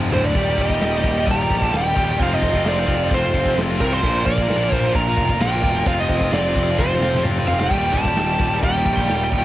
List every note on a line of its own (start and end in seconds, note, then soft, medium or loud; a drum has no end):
0.00 0.10 F1 loud
0.00 0.10 F2 medium
0.00 0.11 C3 medium
0.00 0.11 F3 medium
0.00 0.11 F3 loud
0.11 0.33 D1 medium
0.11 0.34 D2 loud
0.11 0.34 D2 medium
0.11 0.34 A2 medium
0.11 0.34 D3 medium
0.11 0.34 D3 loud
0.11 0.25 C5 medium
0.11 floor tom medium
0.23 0.60 D5 medium
0.23 floor tom medium
0.35 0.56 D#1 loud
0.35 1.94 D#2 medium
0.35 1.95 A#2 medium
0.35 2.18 D#3 medium
0.35 1.94 D#3 medium
0.35 0.42 G3 medium
0.35 2.18 A#3 medium
0.35 2.18 F4 medium
0.35 0.43 G4 medium
0.35 4.00 G4 medium
0.35 kick loud
0.35 china medium
0.43 0.49 G3 medium
0.43 0.51 G4 medium
0.49 0.57 G3 medium
0.49 0.59 G4 medium
0.58 0.79 D#1 medium
0.58 0.65 G3 medium
0.58 0.66 G4 medium
0.58 1.25 D#5 loud
0.58 kick loud
0.66 0.72 G3 medium
0.66 0.74 G4 medium
0.66 kick medium
0.73 0.81 G3 medium
0.73 0.82 G4 medium
0.81 1.02 D#1 medium
0.81 0.87 G3 medium
0.81 0.89 G4 medium
0.81 snare loud
0.81 china medium
0.87 0.95 G3 medium
0.87 0.96 G4 medium
0.97 1.03 G3 medium
0.97 1.04 G4 medium
1.03 1.25 D#1 medium
1.03 1.11 G3 medium
1.03 1.12 G4 medium
1.03 kick medium
1.11 1.17 G3 medium
1.11 1.19 G4 medium
1.18 1.25 G3 medium
1.18 1.26 G4 medium
1.27 1.48 D#1 loud
1.27 1.34 G3 medium
1.27 1.34 G4 medium
1.27 kick loud
1.27 china medium
1.31 1.42 G3 medium
1.31 1.72 A#5 loud
1.35 1.42 G4 medium
1.42 1.49 G3 medium
1.42 1.50 G4 medium
1.49 1.71 A#1 medium
1.49 1.57 G3 medium
1.49 1.56 G4 medium
1.49 kick medium
1.56 1.64 G3 medium
1.56 1.64 G4 medium
1.62 1.72 G3 medium
1.62 1.73 G4 medium
1.62 kick medium
1.72 1.94 D#1 loud
1.72 1.80 G3 medium
1.72 1.80 G4 medium
1.72 snare loud
1.72 china medium
1.77 1.88 G3 medium
1.77 1.88 G4 medium
1.77 2.18 G5 loud
1.88 1.95 G3 medium
1.88 1.97 G4 medium
1.95 2.17 D#1 medium
1.95 2.17 D#2 medium
1.95 2.18 A#2 medium
1.95 2.17 D#3 medium
1.95 2.03 G3 medium
1.95 2.04 G4 medium
1.95 kick medium
2.03 2.10 G3 medium
2.03 2.11 G4 medium
2.11 2.19 G3 medium
2.11 2.19 G4 medium
2.17 2.41 F1 loud
2.17 3.77 F2 medium
2.17 3.78 C3 medium
2.17 4.01 F3 medium
2.17 3.78 F3 loud
2.17 2.26 C4 medium
2.17 4.01 C4 medium
2.17 2.27 F4 medium
2.17 4.01 A4 medium
2.17 kick loud
2.17 china medium
2.23 2.34 C4 medium
2.23 2.33 F5 loud
2.27 2.33 F4 medium
2.34 2.42 C4 medium
2.34 2.41 F4 medium
2.34 2.68 D#5 medium
2.42 2.63 F1 loud
2.42 2.49 C4 medium
2.42 2.50 F4 medium
2.42 kick loud
2.49 2.56 C4 medium
2.49 2.56 F4 medium
2.54 2.65 C4 medium
2.54 2.64 F4 medium
2.54 kick medium
2.65 2.86 F1 loud
2.65 2.73 C4 medium
2.65 2.72 F4 medium
2.65 3.14 D5 loud
2.65 snare loud
2.65 china medium
2.72 2.79 C4 medium
2.72 2.79 F4 medium
2.79 2.87 C4 medium
2.79 2.87 F4 medium
2.87 3.09 F1 medium
2.87 2.95 C4 medium
2.87 2.95 F4 medium
2.87 kick medium
2.95 3.03 C4 medium
2.95 3.04 F4 medium
3.04 3.10 C4 medium
3.04 3.10 F4 medium
3.10 3.32 F1 loud
3.10 3.18 C4 medium
3.10 3.17 F4 medium
3.10 kick loud
3.10 china medium
3.14 3.24 F4 medium
3.14 3.55 C5 medium
3.19 3.26 C4 medium
3.25 3.33 C4 medium
3.25 3.32 F4 medium
3.32 3.55 F1 medium
3.32 3.41 C4 medium
3.32 3.40 F4 medium
3.32 kick medium
3.40 3.49 C4 medium
3.40 3.48 F4 medium
3.46 3.56 C4 medium
3.46 3.55 F4 medium
3.46 kick medium
3.55 3.78 F1 loud
3.55 3.63 C4 medium
3.55 3.63 F4 medium
3.55 snare loud
3.55 china medium
3.63 3.71 C4 medium
3.63 3.70 F4 medium
3.71 3.79 C4 medium
3.71 3.78 F4 medium
3.78 4.01 C2 loud
3.78 4.02 F2 medium
3.78 4.02 C3 medium
3.78 4.04 F3 medium
3.78 3.86 C4 medium
3.78 3.85 F4 medium
3.78 3.93 A#4 medium
3.78 kick medium
3.86 3.94 C4 medium
3.86 3.92 F4 medium
3.93 4.02 C4 medium
3.93 4.00 F4 medium
3.93 4.27 C5 medium
4.02 4.24 A#1 loud
4.02 5.62 A#2 medium
4.02 5.63 F3 medium
4.02 5.86 A#3 medium
4.02 5.61 A#3 loud
4.02 5.85 D4 medium
4.02 4.08 F4 medium
4.02 5.85 F4 medium
4.02 4.10 A#4 medium
4.02 kick loud
4.02 china medium
4.02 crash loud
4.09 4.16 F4 medium
4.09 4.18 A#4 medium
4.18 4.24 F4 medium
4.18 4.26 A#4 medium
4.25 4.47 A#1 medium
4.25 4.32 F4 medium
4.25 4.33 A#4 medium
4.25 4.74 D5 loud
4.25 kick medium
4.34 4.40 F4 medium
4.34 4.41 A#4 medium
4.38 4.47 F4 medium
4.38 kick medium
4.43 4.49 A#4 medium
4.48 4.70 A#1 medium
4.48 4.56 F4 medium
4.48 4.56 A#4 medium
4.48 snare loud
4.48 china medium
4.56 4.63 F4 medium
4.56 4.64 A#4 medium
4.64 4.71 F4 medium
4.64 4.72 A#4 medium
4.72 4.93 A#1 medium
4.72 4.79 F4 medium
4.72 4.79 A#4 medium
4.72 4.90 C5 loud
4.72 kick medium
4.79 4.86 F4 medium
4.79 4.87 A#4 medium
4.86 4.93 F4 medium
4.86 4.94 A#4 medium
4.93 5.16 A#1 loud
4.93 5.01 F4 medium
4.93 5.03 A#4 medium
4.93 5.42 A#5 loud
4.93 kick loud
4.93 china medium
5.01 5.08 F4 medium
5.01 5.10 A#4 medium
5.08 5.16 F4 medium
5.08 5.16 A#4 medium
5.17 5.39 F1 medium
5.17 5.24 F4 medium
5.17 5.24 A#4 medium
5.17 kick medium
5.24 5.32 F4 medium
5.24 5.32 A#4 medium
5.29 5.39 F4 medium
5.29 5.40 A#4 medium
5.29 kick medium
5.39 5.62 A#1 medium
5.39 5.46 F4 medium
5.39 5.49 A#4 medium
5.39 5.87 G5 loud
5.39 snare loud
5.39 china medium
5.47 5.54 F4 medium
5.47 5.56 A#4 medium
5.55 5.62 F4 medium
5.55 5.64 A#4 medium
5.62 5.85 E1 medium
5.62 5.85 A#2 medium
5.62 5.85 F3 medium
5.62 5.84 A#3 medium
5.62 5.70 F4 medium
5.62 5.71 A#4 medium
5.62 kick medium
5.70 5.78 F4 medium
5.70 5.79 A#4 medium
5.79 5.86 F4 medium
5.79 5.86 A#4 medium
5.85 6.08 F1 loud
5.85 7.45 F2 medium
5.85 7.46 C3 medium
5.85 7.69 F3 medium
5.85 7.45 F3 loud
5.85 5.93 C4 medium
5.85 7.69 C4 medium
5.85 5.94 F4 medium
5.85 9.45 G4 medium
5.85 7.70 A4 medium
5.85 5.98 F5 loud
5.85 kick loud
5.85 china medium
5.94 6.01 C4 medium
5.94 6.02 F4 medium
6.00 6.08 C4 medium
6.00 6.09 F4 medium
6.00 6.33 D#5 medium
6.09 6.31 F1 medium
6.09 6.17 C4 medium
6.09 6.17 F4 medium
6.09 kick medium
6.17 6.23 C4 medium
6.17 6.24 F4 medium
6.17 kick medium
6.24 6.31 C4 medium
6.24 6.32 F4 medium
6.32 6.53 F1 medium
6.32 6.40 C4 medium
6.32 6.39 F4 medium
6.32 6.80 D5 medium
6.32 snare loud
6.32 china medium
6.39 6.47 C4 medium
6.39 6.47 F4 medium
6.48 6.55 C4 medium
6.48 6.56 F4 medium
6.55 6.77 F1 medium
6.55 6.63 C4 medium
6.55 6.63 F4 medium
6.55 kick medium
6.63 6.70 C4 medium
6.63 6.71 F4 medium
6.71 6.78 C4 medium
6.71 6.79 F4 medium
6.78 6.99 F1 loud
6.78 6.85 C4 medium
6.78 6.85 F4 medium
6.78 7.22 C5 medium
6.78 kick loud
6.78 high tom medium
6.85 6.93 C4 medium
6.85 6.94 F4 medium
6.94 7.01 C4 medium
6.94 7.02 F4 medium
6.99 7.22 F1 medium
6.99 7.09 C4 medium
6.99 7.09 F4 medium
6.99 snare medium
7.09 7.17 C4 medium
7.09 7.16 F4 medium
7.14 7.24 C4 medium
7.14 7.24 F4 medium
7.14 mid tom medium
7.23 7.45 F1 medium
7.23 7.31 C4 medium
7.23 7.31 F4 medium
7.23 mid tom medium
7.31 7.39 C4 medium
7.31 7.38 F4 medium
7.39 7.46 C4 medium
7.39 7.47 F4 medium
7.46 7.69 F1 medium
7.46 7.69 F2 medium
7.46 7.69 C3 medium
7.46 7.68 F3 medium
7.46 7.54 C4 medium
7.46 7.54 F4 medium
7.46 7.59 F5 medium
7.46 floor tom medium
7.54 7.62 C4 medium
7.54 7.62 F4 medium
7.60 7.70 C4 medium
7.60 7.70 F4 medium
7.60 7.95 G5 medium
7.60 snare medium
7.70 7.92 D#1 loud
7.70 9.30 D#2 medium
7.70 9.31 A#2 medium
7.70 9.45 D#3 medium
7.70 9.30 D#3 medium
7.70 7.77 G3 medium
7.70 9.45 A#3 medium
7.70 9.45 F4 medium
7.70 7.78 G4 medium
7.70 kick loud
7.70 crash loud
7.70 china medium
7.78 7.85 G3 medium
7.78 7.86 G4 medium
7.86 7.92 G3 medium
7.86 7.94 G4 medium
7.92 8.15 D#1 medium
7.92 8.00 G3 medium
7.92 8.01 G4 medium
7.92 8.58 A5 loud
7.92 kick loud
8.01 8.08 G3 medium
8.01 8.08 G4 medium
8.05 8.17 G3 medium
8.05 8.16 G4 medium
8.05 kick medium
8.16 8.38 D#1 loud
8.16 8.23 G3 medium
8.16 8.25 G4 medium
8.16 snare loud
8.16 china medium
8.24 8.31 G3 medium
8.24 8.32 G4 medium
8.32 8.39 G3 medium
8.32 8.39 G4 medium
8.39 8.61 D#1 medium
8.39 8.47 G3 medium
8.39 8.47 G4 medium
8.39 kick medium
8.47 8.54 G3 medium
8.47 8.54 G4 medium
8.55 8.62 G3 medium
8.55 8.62 G4 medium
8.62 8.84 D#1 loud
8.62 8.70 G3 medium
8.62 8.71 G4 medium
8.62 9.45 G5 loud
8.62 kick loud
8.62 china medium
8.70 8.78 G3 medium
8.70 8.77 G4 medium
8.78 8.85 G3 medium
8.78 8.85 G4 medium
8.86 9.07 A#1 medium
8.86 8.92 G3 medium
8.86 8.93 G4 medium
8.86 kick medium
8.93 9.00 G3 medium
8.93 9.01 G4 medium
8.97 9.08 G3 medium
8.97 kick medium
9.01 9.09 G4 medium
9.09 9.31 D#1 loud
9.09 9.16 G3 medium
9.09 9.16 G4 medium
9.09 snare loud
9.09 china medium
9.16 9.24 G3 medium
9.16 9.24 G4 medium
9.24 9.30 G3 medium
9.24 9.32 G4 medium
9.31 9.45 D#1 medium
9.31 9.45 D#2 medium
9.31 9.45 A#2 medium
9.31 9.45 D#3 medium
9.31 9.38 G3 medium
9.31 9.39 G4 medium
9.31 kick medium
9.39 9.45 G3 medium
9.39 9.45 G4 medium